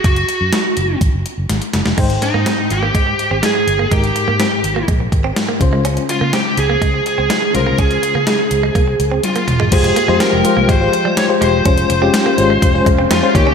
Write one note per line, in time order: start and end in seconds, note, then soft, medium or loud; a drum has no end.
0.04 0.22 F#1 medium
0.04 0.98 F#4 medium
0.04 kick medium
0.04 closed hi-hat medium
0.16 closed hi-hat soft
0.29 closed hi-hat medium
0.41 0.50 F#2 medium
0.53 snare loud
0.53 closed hi-hat medium
0.77 0.95 F#1 medium
0.77 closed hi-hat medium
1.01 1.10 G#1 medium
1.01 kick medium
1.01 closed hi-hat medium
1.13 1.22 F#1 medium
1.26 closed hi-hat medium
1.38 1.47 F#1 medium
1.49 1.59 G#1 medium
1.49 snare soft
1.49 closed hi-hat medium
1.62 closed hi-hat soft
1.74 1.83 F#1 medium
1.74 snare medium
1.74 closed hi-hat medium
1.86 1.95 F1 medium
1.86 snare medium
1.97 2.16 G#1 medium
1.97 2.66 G#2 medium
1.97 3.87 G#3 medium
1.97 2.05 G#3 medium
1.97 3.87 D#4 medium
1.97 3.88 C5 medium
1.97 3.88 G5 medium
1.97 kick medium
1.97 crash medium
2.10 closed hi-hat soft
2.22 2.72 D#4 medium
2.22 muted clean electric guitar stroke soft
2.22 closed hi-hat medium
2.34 2.43 G#2 medium
2.34 2.41 A#3 medium
2.46 2.53 C4 medium
2.46 snare loud
2.46 closed hi-hat medium
2.58 muted clean electric guitar stroke soft
2.70 2.89 G#1 medium
2.70 3.44 G4 medium
2.70 closed hi-hat medium
2.83 2.90 A#3 medium
2.95 3.13 G#2 medium
2.95 3.02 G#3 medium
2.95 kick medium
2.95 closed hi-hat medium
3.07 muted clean electric guitar stroke soft
3.19 closed hi-hat medium
3.31 3.40 G#1 medium
3.31 3.38 C4 medium
3.43 3.50 G#3 medium
3.43 3.92 G#4 medium
3.43 snare medium
3.43 closed hi-hat medium
3.55 muted clean electric guitar stroke soft
3.67 3.85 G1 medium
3.67 closed hi-hat medium
3.79 3.86 A#3 medium
3.90 4.10 G#1 medium
3.90 4.60 G#2 medium
3.90 5.57 G#3 medium
3.90 3.98 G#3 medium
3.90 5.57 D#4 medium
3.90 5.58 G4 soft
3.90 4.85 G4 medium
3.90 5.58 A#4 medium
3.90 kick medium
3.90 closed hi-hat medium
4.04 closed hi-hat soft
4.16 muted clean electric guitar stroke soft
4.16 closed hi-hat medium
4.28 4.37 G#2 medium
4.28 4.35 A#3 medium
4.40 4.47 C4 medium
4.40 snare loud
4.40 closed hi-hat medium
4.52 muted clean electric guitar stroke soft
4.64 4.82 G#1 medium
4.64 closed hi-hat medium
4.76 4.83 A#3 medium
4.88 5.06 A#1 medium
4.88 4.95 G#3 medium
4.88 kick medium
4.88 closed hi-hat medium
5.00 muted clean electric guitar stroke soft
5.12 5.30 G#1 medium
5.12 kick medium
5.12 closed hi-hat medium
5.24 5.31 C4 medium
5.36 snare loud
5.36 closed hi-hat medium
5.49 5.56 A#3 medium
5.60 5.97 C#2 medium
5.60 6.29 C#3 medium
5.60 7.50 G#3 medium
5.60 7.50 C#4 medium
5.60 7.51 F4 medium
5.60 7.51 C5 medium
5.60 muted clean electric guitar stroke soft
5.60 kick medium
5.60 closed hi-hat medium
5.73 5.80 G#3 medium
5.85 5.92 C#4 medium
5.85 closed hi-hat medium
5.97 closed hi-hat soft
6.09 6.35 F4 medium
6.09 muted clean electric guitar stroke soft
6.09 closed hi-hat medium
6.21 6.30 C#3 medium
6.21 6.28 A#3 medium
6.33 6.40 C4 medium
6.33 6.58 G4 medium
6.33 snare loud
6.33 closed hi-hat medium
6.46 muted clean electric guitar stroke soft
6.57 6.76 C#2 medium
6.57 7.03 G#4 medium
6.57 closed hi-hat medium
6.70 6.77 A#3 medium
6.82 7.00 C#3 medium
6.82 6.89 G#3 medium
6.82 kick medium
6.82 closed hi-hat medium
6.94 muted clean electric guitar stroke soft
7.06 7.55 G#4 medium
7.06 closed hi-hat medium
7.18 7.27 C#2 medium
7.18 7.25 C4 medium
7.30 7.37 G#3 medium
7.30 snare medium
7.30 closed hi-hat medium
7.42 muted clean electric guitar stroke soft
7.53 7.73 C2 medium
7.53 8.23 C#3 medium
7.53 9.43 G#3 medium
7.53 9.44 C#4 medium
7.53 9.44 F4 medium
7.53 7.79 A#4 medium
7.53 9.45 C5 medium
7.53 closed hi-hat medium
7.67 7.74 A#3 medium
7.78 7.97 C#2 medium
7.78 7.86 C#4 medium
7.78 9.20 G#4 medium
7.78 kick medium
7.78 closed hi-hat medium
7.91 closed hi-hat soft
8.03 muted clean electric guitar stroke soft
8.03 closed hi-hat medium
8.15 8.24 C#3 medium
8.15 8.22 A#3 medium
8.27 8.34 G#3 medium
8.27 snare loud
8.27 closed hi-hat medium
8.39 muted clean electric guitar stroke soft
8.51 8.69 C#2 medium
8.51 closed hi-hat medium
8.63 8.70 G#3 medium
8.75 8.93 C2 medium
8.75 8.82 A#3 medium
8.75 kick medium
8.75 closed hi-hat medium
8.88 muted clean electric guitar stroke soft
9.00 9.18 C#2 medium
9.00 closed hi-hat medium
9.12 9.19 C4 medium
9.23 9.74 F4 medium
9.23 closed hi-hat medium
9.23 high tom medium
9.36 9.43 A#3 medium
9.36 closed hi-hat soft
9.48 9.66 E1 medium
9.48 muted clean electric guitar stroke soft
9.48 closed hi-hat medium
9.48 mid tom medium
9.60 9.67 G#3 medium
9.60 floor tom medium
9.71 9.90 F1 loud
9.71 11.63 F3 medium
9.71 9.97 G#3 medium
9.71 11.63 G#3 medium
9.71 9.98 F4 medium
9.71 9.98 G4 medium
9.71 10.21 G#4 medium
9.71 13.31 C5 medium
9.71 9.98 C5 medium
9.71 11.63 G5 medium
9.71 kick loud
9.71 closed hi-hat medium
9.71 crash medium
9.84 muted clean electric guitar stroke soft
9.84 closed hi-hat soft
9.96 10.03 A#3 medium
9.96 closed hi-hat medium
10.08 10.17 F2 loud
10.08 10.34 G#3 medium
10.08 10.15 G#3 medium
10.08 10.34 F4 medium
10.08 10.34 G4 medium
10.08 10.34 C5 medium
10.20 10.27 C4 medium
10.20 10.71 A#4 medium
10.20 snare loud
10.20 closed hi-hat medium
10.33 10.42 F1 medium
10.44 10.70 G#3 medium
10.44 10.70 F4 medium
10.44 10.70 G4 medium
10.44 10.71 C5 medium
10.44 muted clean electric guitar stroke soft
10.44 closed hi-hat medium
10.57 10.66 C2 medium
10.57 10.64 A#3 medium
10.69 10.87 G#1 medium
10.69 10.76 G#3 medium
10.69 11.17 C5 medium
10.69 kick medium
10.69 closed hi-hat medium
10.80 11.15 G#3 medium
10.80 11.15 F4 medium
10.80 11.15 G4 medium
10.80 11.15 C5 medium
10.93 muted clean electric guitar stroke soft
10.93 closed hi-hat medium
11.05 11.12 G3 medium
11.17 11.24 C#5 loud
11.17 snare loud
11.17 closed hi-hat loud
11.29 11.55 G#3 medium
11.29 11.55 F4 medium
11.29 11.55 G4 medium
11.29 11.55 C5 medium
11.41 11.60 E1 medium
11.41 11.48 G#3 medium
11.41 12.83 C5 medium
11.41 closed hi-hat medium
11.65 11.84 F1 medium
11.65 11.91 G#3 medium
11.65 11.91 C#4 medium
11.65 11.73 C#4 medium
11.65 13.54 C#4 medium
11.65 13.33 F4 medium
11.65 11.91 F4 medium
11.65 11.91 C5 medium
11.65 kick loud
11.65 closed hi-hat medium
11.78 closed hi-hat medium
11.90 12.08 F1 medium
11.90 muted clean electric guitar stroke soft
11.90 closed hi-hat medium
12.01 12.27 G#3 medium
12.01 12.09 C4 medium
12.01 12.27 C#4 medium
12.01 12.27 F4 medium
12.01 12.28 G4 loud
12.14 snare loud
12.14 closed hi-hat loud
12.26 12.33 A#3 medium
12.37 12.56 G#1 medium
12.37 12.63 G#3 medium
12.37 12.64 C#4 medium
12.37 12.64 F4 medium
12.37 12.64 C5 medium
12.37 muted clean electric guitar stroke soft
12.37 closed hi-hat medium
12.50 12.57 G#3 medium
12.62 12.80 F1 medium
12.62 muted clean electric guitar stroke soft
12.62 kick medium
12.62 closed hi-hat medium
12.74 13.08 G#3 medium
12.74 13.08 C#4 medium
12.74 13.09 F4 medium
12.74 13.09 C5 loud
12.86 13.05 F1 medium
12.86 12.93 G#3 medium
12.86 kick medium
12.86 closed hi-hat medium
12.99 13.06 C4 medium
13.11 13.20 F2 loud
13.11 13.18 C4 medium
13.11 13.34 F4 medium
13.11 snare loud
13.11 closed hi-hat loud
13.22 13.35 G#3 medium
13.22 13.35 C#4 medium
13.22 13.35 F4 medium
13.22 13.35 C5 medium
13.34 13.44 D#2 medium
13.34 13.54 D#3 medium
13.34 13.54 A#3 medium
13.34 13.54 D#4 medium
13.34 13.54 G4 medium
13.34 13.54 C#5 medium
13.34 muted clean electric guitar stroke soft
13.34 kick medium
13.34 closed hi-hat medium
13.47 13.54 D2 medium
13.47 13.54 C#4 medium